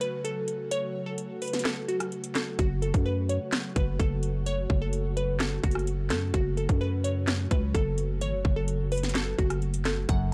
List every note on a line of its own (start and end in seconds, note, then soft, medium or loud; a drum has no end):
0.00 2.55 C#3 medium
0.00 6.30 F#3 medium
0.00 10.05 A3 medium
0.00 10.05 F#4 medium
0.00 0.21 B4 medium
0.00 closed hi-hat medium
0.25 0.69 A4 medium
0.25 closed hi-hat medium
0.48 closed hi-hat medium
0.71 1.04 C#5 loud
0.71 closed hi-hat medium
1.06 1.16 A4 medium
1.18 closed hi-hat medium
1.42 1.62 B4 medium
1.42 closed hi-hat soft
1.42 open hi-hat medium
1.48 closed hi-hat medium
1.53 snare medium
1.53 closed hi-hat medium
1.59 closed hi-hat medium
1.65 1.85 A4 medium
1.65 snare loud
1.65 clap medium
1.65 closed hi-hat medium
1.88 2.33 F#4 medium
1.88 closed hi-hat medium
2.00 cross-stick medium
2.00 closed hi-hat medium
2.12 closed hi-hat soft
2.24 closed hi-hat medium
2.35 2.55 A4 medium
2.35 snare loud
2.35 clap medium
2.35 closed hi-hat medium
2.59 2.93 F#1 loud
2.59 10.05 C#3 medium
2.59 2.79 F#4 medium
2.59 kick loud
2.59 closed hi-hat medium
2.82 3.02 A4 medium
2.82 closed hi-hat medium
2.94 3.39 F#2 loud
2.94 kick medium
2.94 closed hi-hat medium
3.06 3.25 B4 medium
3.29 3.73 C#5 medium
3.29 closed hi-hat medium
3.52 snare loud
3.52 clap medium
3.52 closed hi-hat medium
3.76 3.99 F#1 loud
3.76 3.96 B4 medium
3.76 kick medium
3.76 closed hi-hat medium
4.00 4.67 F#1 loud
4.00 4.44 A4 medium
4.00 kick loud
4.00 closed hi-hat medium
4.23 closed hi-hat medium
4.46 4.79 C#5 loud
4.46 closed hi-hat medium
4.70 5.60 F#1 loud
4.70 kick medium
4.82 4.91 A4 medium
4.93 closed hi-hat medium
5.17 5.36 B4 medium
5.17 closed hi-hat medium
5.40 5.60 A4 medium
5.40 snare loud
5.40 clap medium
5.40 closed hi-hat medium
5.64 6.12 F#1 loud
5.64 6.08 F#4 medium
5.64 kick medium
5.64 closed hi-hat medium
5.71 cross-stick medium
5.71 closed hi-hat medium
5.79 closed hi-hat soft
5.87 closed hi-hat medium
6.10 6.33 F#2 loud
6.10 6.30 A4 medium
6.10 snare loud
6.10 clap medium
6.10 closed hi-hat medium
6.34 6.68 F#1 loud
6.34 10.05 F#3 medium
6.34 6.54 F#4 medium
6.34 kick loud
6.34 closed hi-hat medium
6.57 6.77 A4 medium
6.57 closed hi-hat medium
6.69 7.48 F#2 loud
6.69 kick medium
6.69 closed hi-hat medium
6.81 7.01 B4 medium
7.04 7.48 C#5 medium
7.04 closed hi-hat medium
7.27 snare loud
7.27 clap medium
7.27 closed hi-hat medium
7.51 7.74 C#2 loud
7.51 7.71 B4 medium
7.51 kick medium
7.51 closed hi-hat medium
7.75 8.23 F#1 loud
7.75 8.19 A4 medium
7.75 kick loud
7.75 closed hi-hat medium
7.98 closed hi-hat medium
8.21 8.35 G#1 loud
8.21 8.54 C#5 loud
8.21 closed hi-hat medium
8.33 8.44 F#1 loud
8.45 9.35 F#1 loud
8.45 kick medium
8.56 8.66 A4 medium
8.68 closed hi-hat medium
8.92 9.11 B4 medium
8.92 closed hi-hat medium
8.92 open hi-hat medium
8.98 closed hi-hat medium
9.03 snare medium
9.03 closed hi-hat medium
9.09 closed hi-hat medium
9.15 9.35 A4 loud
9.15 snare loud
9.15 clap medium
9.15 closed hi-hat medium
9.38 10.06 F#1 loud
9.38 9.83 F#4 medium
9.38 kick medium
9.38 closed hi-hat medium
9.50 cross-stick medium
9.50 closed hi-hat medium
9.62 closed hi-hat soft
9.74 closed hi-hat medium
9.85 10.05 A4 medium
9.85 snare medium
9.85 clap medium
9.85 closed hi-hat medium
10.09 10.34 F#1 loud
10.09 10.31 F#2 medium
10.09 10.34 C#3 medium
10.09 10.34 F#3 medium
10.09 10.34 A3 medium
10.09 10.34 F#4 medium
10.09 10.29 F#5 medium
10.09 kick loud
10.09 closed hi-hat medium